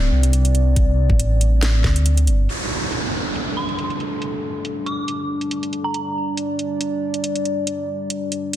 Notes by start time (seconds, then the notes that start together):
Already playing: D1 G3 C4 D5
0.12 C2
0.23 closed hi-hat
0.33 closed hi-hat
0.45 closed hi-hat
0.55 closed hi-hat
0.76 kick, closed hi-hat
1.10 A1, kick
1.20 closed hi-hat
1.41 closed hi-hat
1.63 snare, closed hi-hat
1.84 D2, kick, snare
1.96 closed hi-hat
2.06 closed hi-hat
2.17 closed hi-hat
2.27 G1, closed hi-hat
2.49 G3 D4 A4, closed hi-hat, downlifter
2.92 closed hi-hat
3.14 closed hi-hat
3.35 closed hi-hat
3.57 C6
3.69 closed hi-hat
3.79 closed hi-hat
3.90 closed hi-hat
4.00 closed hi-hat
4.22 closed hi-hat
4.65 closed hi-hat
4.86 D6, closed hi-hat
5.08 closed hi-hat
5.41 closed hi-hat
5.51 closed hi-hat
5.63 closed hi-hat
5.73 closed hi-hat
5.84 A#5
5.94 D5, closed hi-hat
6.37 closed hi-hat
6.59 closed hi-hat
6.81 closed hi-hat
7.14 closed hi-hat
7.24 closed hi-hat
7.36 closed hi-hat
7.45 closed hi-hat
7.67 closed hi-hat
8.10 closed hi-hat
8.32 closed hi-hat